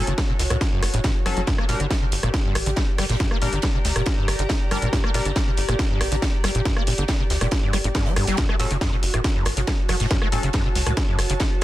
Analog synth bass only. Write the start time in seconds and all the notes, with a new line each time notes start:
0.07 F#1
0.40 C#2
0.51 C#2
0.83 F#1
0.94 F#1
1.26 F#1
1.37 F#1
1.69 G1
1.80 G1
2.12 G1
2.23 G1
2.55 A1
2.66 A1
2.98 G1
3.10 G1
3.42 G1
3.53 G1
3.85 D2
3.96 F1
4.28 G1
4.39 G1
4.71 G1
4.82 G1
5.14 G1
5.25 G1
5.58 G1
5.69 G1
6.01 A1
6.12 A1
6.44 G1
6.55 G1
6.87 G1
6.98 G1
7.30 D2
7.41 F1
7.73 G1
7.84 G1
8.17 G1
8.27 G1
8.60 F#1
8.71 F#1
9.03 F#1
9.14 F#1
9.46 G#1
9.57 G#1
9.89 F#1
10.00 F#1
10.32 F#1
10.43 F#1
10.76 C#2
10.87 C#2
11.19 F#1
11.30 F#1